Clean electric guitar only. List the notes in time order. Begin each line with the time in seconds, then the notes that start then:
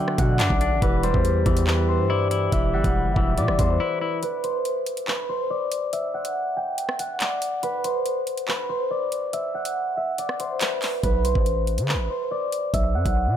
Already playing: D3 F#3
0.40 D4
0.61 D4
0.82 E3
1.04 G3
1.46 E3
1.67 E3
2.10 E4
2.31 E4
2.52 E3
2.74 G3
3.16 E3
3.38 E3
3.80 E4
4.01 E4